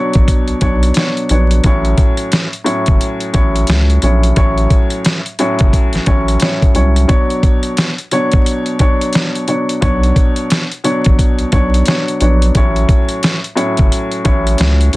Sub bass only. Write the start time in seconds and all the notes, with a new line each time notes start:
0.15 A1
0.49 B1
0.62 B1
1.30 A#1
1.64 A1
2.88 F#1
3.34 A1
3.69 C#2
4.03 A#1
4.37 A1
5.61 F#1
5.94 A1
6.07 A1
6.75 C2
9.82 B1
11.06 A1
11.40 B1
11.53 B1
12.21 A#1
12.55 A1
13.79 F#1
14.25 A1
14.60 C#2